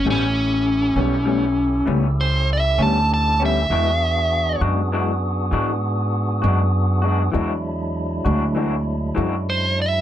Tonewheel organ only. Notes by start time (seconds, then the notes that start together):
0.06 C#4 E4 G4 A4
3.70 B3 D4 F#4 G#4
7.34 F#3 G#3 D4 E4